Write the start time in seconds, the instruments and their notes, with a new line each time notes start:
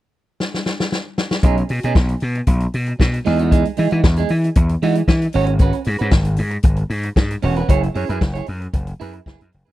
0.40 snare
0.54 snare
0.66 snare
0.80 snare
0.92 snare
1.18 snare
1.31 snare
1.43 slap bass B1, clean electric guitar C#4 D#4 G#4, kick, closed hi-hat
1.57 muted clean electric guitar stroke, closed hi-hat
1.69 slap bass B2, muted clean electric guitar stroke, open hi-hat
1.83 slap bass B2, clean electric guitar C#4 D#4 G#4, closed hi-hat
1.95 slap bass B1, muted clean electric guitar stroke, kick, snare
2.09 muted clean electric guitar stroke, closed hi-hat
2.20 slap bass B2, open hi-hat
2.35 muted clean electric guitar stroke, closed hi-hat
2.47 slap bass B1, muted clean electric guitar stroke, kick, closed hi-hat
2.60 muted clean electric guitar stroke, closed hi-hat
2.74 slap bass B2, open hi-hat
2.86 muted clean electric guitar stroke, closed hi-hat
2.99 slap bass B2, muted clean electric guitar stroke, kick, snare
3.13 muted clean electric guitar stroke, closed hi-hat
3.25 slap bass E2, clean electric guitar G#3 D#4 G#4, snare, open hi-hat
3.39 clean electric guitar G#3 D#4 F#4, closed hi-hat
3.51 clean electric guitar G#3 D#4 G#4, kick, closed hi-hat
3.65 muted clean electric guitar stroke, closed hi-hat
3.77 slap bass E3, clean electric guitar G#3 D#4 G#4, open hi-hat
3.91 slap bass E3, clean electric guitar G#3 D#4 F#4, closed hi-hat
4.04 slap bass E2, muted clean electric guitar stroke, kick, snare
4.17 clean electric guitar G#3 D#4 G#4, closed hi-hat
4.29 slap bass E3, muted clean electric guitar stroke, open hi-hat
4.44 muted clean electric guitar stroke, closed hi-hat
4.55 slap bass E2, muted clean electric guitar stroke, kick, closed hi-hat
4.69 muted clean electric guitar stroke, closed hi-hat
4.82 slap bass E3, clean electric guitar G#3 D#4 F#4, open hi-hat
4.95 muted clean electric guitar stroke, closed hi-hat
5.08 slap bass E3, muted clean electric guitar stroke, kick, snare
5.22 muted clean electric guitar stroke, closed hi-hat
5.33 slap bass G#1, clean electric guitar C#4 F#4 C#5, open hi-hat
5.47 muted clean electric guitar stroke, closed hi-hat
5.59 clean electric guitar C#4 F#4 B4, kick, closed hi-hat
5.73 muted clean electric guitar stroke, closed hi-hat
5.84 slap bass G#2, muted clean electric guitar stroke, open hi-hat
5.99 slap bass G#2, clean electric guitar C#4 F#4 B4, closed hi-hat
6.11 slap bass G#1, muted clean electric guitar stroke, kick, snare
6.25 muted clean electric guitar stroke, closed hi-hat
6.37 slap bass G#2, open hi-hat
6.51 muted clean electric guitar stroke, closed hi-hat
6.63 slap bass G#1, muted clean electric guitar stroke, kick, closed hi-hat
6.76 muted clean electric guitar stroke, closed hi-hat
6.90 slap bass G#2, open hi-hat
7.03 muted clean electric guitar stroke, closed hi-hat
7.16 slap bass G#2, muted clean electric guitar stroke, kick, snare
7.31 muted clean electric guitar stroke, closed hi-hat
7.42 slap bass E1, clean electric guitar C#4 F#4 C#5, open hi-hat
7.56 clean electric guitar C#4 F#4 B4, closed hi-hat
7.69 slap bass F#1, clean electric guitar E4 G#4 C#5, kick, closed hi-hat
7.83 muted clean electric guitar stroke, closed hi-hat
7.95 slap bass F#2, clean electric guitar E4 G#4 C#5, open hi-hat
8.09 slap bass F#2, clean electric guitar E4 G#4 B4, closed hi-hat
8.21 slap bass F#1, muted clean electric guitar stroke, kick, snare
8.34 clean electric guitar E4 G#4 C#5, closed hi-hat
8.46 slap bass F#2, muted clean electric guitar stroke, open hi-hat
8.60 muted clean electric guitar stroke, closed hi-hat
8.73 slap bass F#1, muted clean electric guitar stroke, kick, closed hi-hat
8.87 muted clean electric guitar stroke, closed hi-hat
9.00 slap bass F#2, clean electric guitar E4 G#4 B4, open hi-hat
9.13 muted clean electric guitar stroke, closed hi-hat
9.26 slap bass F#1, clean electric guitar E4 G#4 B4, kick, snare
9.40 slap bass F#2, muted clean electric guitar stroke, closed hi-hat
9.51 slap bass F#1, muted clean electric guitar stroke, open hi-hat
9.65 slap bass F#2, clean electric guitar E4 G#4 B4